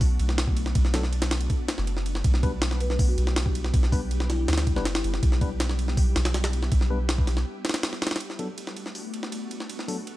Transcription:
Already playing: sub bass B1, ambient pad A3 B3 D4 F#4
0.01 kick, open hi-hat
0.19 sub bass B1, ride
0.29 snare
0.38 snare, ride
0.47 kick
0.57 ride
0.66 snare
0.75 sub bass B1, kick, ride
0.85 snare
0.94 tine electric piano F#3 B3 D4 A4, snare, ride
1.03 snare
1.13 ride
1.22 snare, ride
1.31 snare, ride
1.41 ride
1.50 kick, ride
1.69 snare, ride
1.78 sub bass F#1, snare
1.87 ride
1.97 snare
2.06 ride
2.15 snare
2.24 sub bass B1, ambient pad G3 G4, kick, ride
2.34 snare
2.43 tine electric piano G3 B3 D4 B4, kick, ride
2.62 snare, ride
2.71 snare
2.80 marimba B4, ride
2.90 marimba B4, snare
2.99 kick, open hi-hat
3.08 marimba F#4
3.18 sub bass B1, ride
3.27 snare
3.36 snare, ride
3.46 kick
3.55 ride
3.65 snare
3.74 sub bass B1, kick, ride
3.83 snare
3.92 tine electric piano G3 B3 D4 B4, kick, open hi-hat
4.11 ride
4.20 snare
4.30 marimba E4, snare, ride
4.39 marimba E4
4.48 sub bass D2, snare, ride
4.53 snare, ride
4.58 snare, ride
4.67 kick, ride
4.76 sub bass F#1, tine electric piano G3 B3 D4 B4, snare
4.85 snare, ride
4.95 marimba E4, snare, ride
5.04 sub bass F#1, ride
5.14 snare
5.23 sub bass B1, ambient pad E4, kick, ride
5.32 snare
5.41 tine electric piano G3 B3 D4 B4, kick, ride
5.60 snare, ride
5.69 snare
5.79 ride
5.88 snare
5.97 kick, open hi-hat
6.16 sub bass B1, snare, ride
6.25 snare, ride
6.34 snare, ride
6.44 snare, ride
6.53 ride
6.63 snare
6.72 sub bass B1, kick, ride
6.81 snare
6.90 tine electric piano G3 B3 D4 B4
7.09 snare, ride
7.18 kick
7.27 snare, ride
7.37 snare
7.65 snare, ride
7.69 snare, ride
7.74 snare, ride
7.83 snare, ride
7.93 snare
8.02 snare, ride
8.07 snare, ride
8.11 snare, ride
8.16 snare, ride
8.20 ambient pad A3 B3 D4 F#4, ride
8.30 snare
8.39 tine electric piano F#3 B3 D4 A4, ride
8.58 ride
8.67 snare
8.77 ride
8.86 snare
8.95 open hi-hat
9.14 ride
9.23 snare
9.32 ride
9.51 ride
9.60 snare
9.70 ride
9.79 snare
9.88 tine electric piano F#3 B3 D4 A4, open hi-hat
10.07 ride

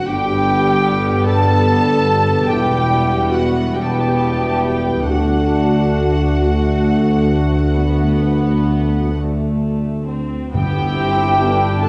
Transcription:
0.06 tuba G1, double bass section G1, cello section G2, trombone section D3 G3, viola section G3 B3, french horn section B3 D4, violin section G4 G5, clarinet G4, flute G5
1.25 violin section A4 A5, clarinet A4, flute A5
2.46 tuba E1, double bass section E1, cello section E2, trombone section B2 G3, viola section G3 B3, french horn section B3 E4, violin section G4 G5, clarinet G4, flute G5
3.30 violin section F#4 F#5, clarinet F#4, flute F#5
3.73 trombone section B2 G3, viola section G3 B3, french horn section B3 E4, violin section G4 G5, clarinet G4, flute G5
3.84 violin section A5
3.93 violin section G5
4.00 violin section A5
4.09 violin section G5
4.16 violin section A5
4.25 violin section G5
4.33 violin section A5
4.42 violin section G5
4.48 violin section A5
4.57 violin section G5
5.06 tuba D2, double bass section D2, cello section D2, trombone section D3 A3, french horn section A3 D4, viola section A3 D4, violin section F#4 F#5, clarinet F#4, flute F#5
6.42 viola section A3
7.76 viola section B3
9.16 viola section A3
10.08 viola section C4
10.53 tuba G1, double bass section G1, cello section G2, timpani G2, viola section B3 E4, clarinet G4, violin section G4 G5, flute G5
10.97 viola section C4
11.39 trombone section D3 G3, french horn section B3 D4, viola section D4
11.82 viola section D4, violin section A4 A5, clarinet A4, flute A5

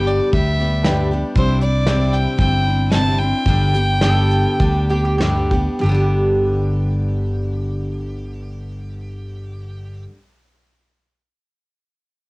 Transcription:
Already playing: fingered electric bass G1, steel-string acoustic guitar G2 D3 G3 B3 D4 G4, grand piano B4 D5 G5
0.07 fiddle D5, closed hi-hat
0.33 fingered electric bass D2, steel-string acoustic guitar G3 B3 D4 G4, fiddle E5, kick, closed hi-hat
0.60 steel-string acoustic guitar G3 B3 D4 G4
0.83 steel-string acoustic guitar G2 D3 G3 B3, grand piano B4 D5 G5, snare, closed hi-hat
0.87 steel-string acoustic guitar D4 G4
1.11 steel-string acoustic guitar G3 B3 D4 G4
1.35 fingered electric bass C2, steel-string acoustic guitar C3 G3 C4 D4 E4, fiddle C5, kick, closed hi-hat
1.61 steel-string acoustic guitar D4 E4, fiddle D5, closed hi-hat
1.65 steel-string acoustic guitar C4
1.86 steel-string acoustic guitar C3 G3 C4 D4 E4, snare, closed hi-hat
2.13 fiddle G5, closed hi-hat
2.39 fingered electric bass G1, steel-string acoustic guitar G3 C4 D4 E4, fiddle G5, kick, closed hi-hat
2.66 steel-string acoustic guitar C4 D4 E4
2.92 steel-string acoustic guitar C3 G3 C4 D4 E4, fiddle A5, snare, closed hi-hat
3.18 steel-string acoustic guitar D4 E4, fiddle G5
3.23 steel-string acoustic guitar C4
3.46 fingered electric bass G1, steel-string acoustic guitar G2 D3 G3 B3 D4 G4, kick, closed hi-hat
3.74 steel-string acoustic guitar G3 B3 D4 G4, closed hi-hat
4.01 steel-string acoustic guitar G2 D3 G3 B3 D4 G4, resonator guitar played with a steel bar A4, snare, closed hi-hat
4.31 closed hi-hat
4.60 fingered electric bass D2, steel-string acoustic guitar G3 B3 D4 G4, kick, closed hi-hat
4.89 steel-string acoustic guitar G3 B3 D4 G4, resonator guitar played with a steel bar G4
5.05 resonator guitar played with a steel bar G4
5.18 steel-string acoustic guitar G2 D3 G3, resonator guitar played with a steel bar G4, snare, closed hi-hat
5.22 steel-string acoustic guitar B3 D4 G4
5.51 steel-string acoustic guitar G3 B3 D4 G4, kick
5.79 steel-string acoustic guitar G2, resonator guitar played with a steel bar G4
5.83 fingered electric bass G1, steel-string acoustic guitar D3 G3
5.89 steel-string acoustic guitar B3 D4
5.94 steel-string acoustic guitar G4

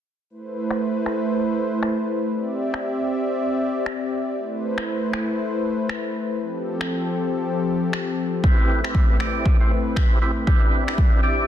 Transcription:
0.30 analog synth pad A3 E4 B4 C5
0.71 finger snap
1.06 finger snap
1.83 finger snap
2.33 analog synth pad C4 G4 D5 E5
2.74 finger snap
3.86 finger snap
4.37 analog synth pad A3 E4 B4 C5
4.78 finger snap
5.13 finger snap
5.89 finger snap
6.41 analog synth pad F3 C4 G4 A4
6.81 finger snap
7.93 finger snap
8.44 analog synth pad A3 C4 E4 B4, tonewheel organ C4 E4 G4 B4, kick
8.84 tonewheel organ C4 E4 G4 B4, finger snap
8.95 kick
9.20 tonewheel organ C4 E4 G4 D5, finger snap
9.46 kick
9.60 tonewheel organ C4 E4 G4 C5
9.96 tonewheel organ C4 E4 G4 B4, finger snap, kick
10.22 tonewheel organ C4 E4 G4 B4
10.47 analog synth pad C4 G4 D5 E5, tonewheel organ D4 E4 G4 B4, kick
10.87 tonewheel organ D4 E4 G4 B4, finger snap
10.98 kick
11.23 tonewheel organ D4 E4 G4 D5

